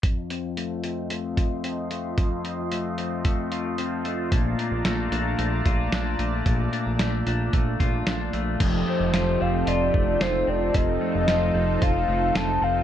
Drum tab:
CC |--------|--------|--------|--------|
HH |xxxxxxxx|xxxxxxxx|xxxxxxxx|xxxxxxxx|
SD |--------|--------|--o---o-|--o---o-|
BD |o----o--|o---o---|o----o--|o---oo--|

CC |x-------|--------|
HH |x-x-x-x-|x-x-x-x-|
SD |--o---o-|--o---o-|
BD |o----o--|o---o---|